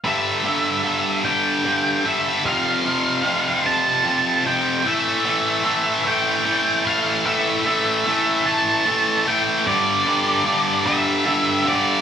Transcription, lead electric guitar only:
X:1
M:6/8
L:1/8
Q:3/8=50
K:Gmix
V:1 name="Lead electric guitar"
e3 g2 e | f3 a2 g | e3 g2 f | e3 a2 g |
d3 e2 d |]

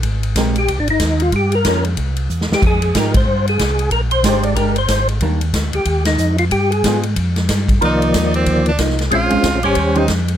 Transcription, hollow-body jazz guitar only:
X:1
M:4/4
L:1/8
Q:"Swing" 1/4=185
K:Cm
V:1 name="Hollow-body jazz guitar"
z2 [A,CGB] z4 z | z2 [F,B,_D] z4 z | z2 [F,A,EG] z4 z | z2 [A,DG]2 [A,DG] z3 |
[E,G,B,D] z6 z | z2 [G,=B,FA] z4 z | z6 [F,B,E] z | z [A,_DF] z3 [E,DGc] z2 |]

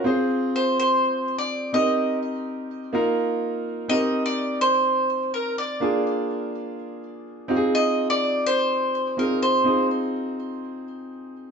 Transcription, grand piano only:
X:1
M:4/4
L:1/8
Q:1/4=125
K:Cm
V:1 name="Grand piano"
[CFAc]6- [CFAc] [CEGB]- | [CEGB]4 [B,EFB]4 | [CEGB]8 | [B,DFA]6- [B,DFA] [CEFGA]- |
[CEFGA]6 [CEFA]2 | [CEFA]8 |]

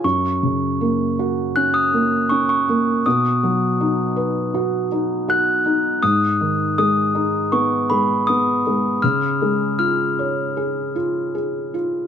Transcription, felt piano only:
X:1
M:4/4
L:1/8
Q:1/4=80
K:F#
V:1 name="Felt piano"
F,, C, A, F C A, C A, | B,, F, D B F D F D | G,, D, G, D B, G, B, G, | C, G, E c G E G E |]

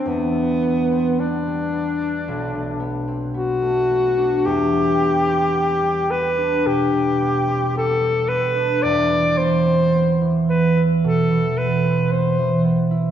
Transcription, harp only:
X:1
M:4/4
L:1/16
Q:1/4=55
K:Em
V:1 name="Harp"
[E,,B,D] G, B, C B, G, B, D B,,, A, B, C B, A, B, D | E,, G, B, C B, G, B, D B,, G, B, C B, G, B, D | E,, E, B, C B, E, B, E B,, E, B, C B, E, B, E |]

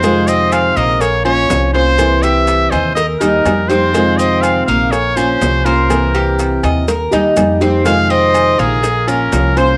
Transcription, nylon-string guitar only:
X:1
M:4/4
L:1/8
Q:1/4=123
K:Fm
V:1 name="Nylon-string guitar"
[C,E,A,CF]4 z [B,DF] [F,B,DF] [B,DF] | [C,=E,B,C=E]4 z [G,B,_EG] [G,B,EG] [G,B,EG] | [C,E,A,CF]4 z [B,DF] [F,B,DF] [B,DF] | [C,=E,B,C=E]4 z [G,B,_EG] [G,B,EG] [G,B,EG] |
[C,E,A,CF]4 z [B,DF] [F,B,DF] [B,DF] |]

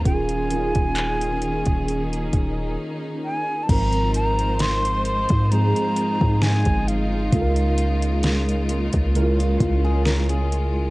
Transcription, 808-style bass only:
X:1
M:4/4
L:1/16
Q:"Swing 16ths" 1/4=66
K:Ab
V:1 name="808-style bass" clef=bass
E,,,3 E,,,4 E,,,3 E,,,2 z4 | A,,,6- A,,, A,,2 z2 A,,2 G,,,3 | D,,6- D,, D,,3 D,,6 |]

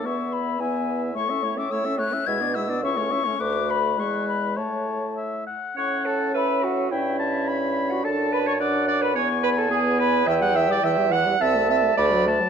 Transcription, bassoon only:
X:1
M:2/4
L:1/8
Q:1/4=106
K:A
V:1 name="Bassoon" clef=bass
E,,4 | A,,4 | B,,2 C,,2 | D,,2 E,,2 |
A,,3 z | A,,4 | =G,,4 | F,,4 |
E,,4 | [K:Em] E,,2 E,,2 | C,,2 D,,2 |]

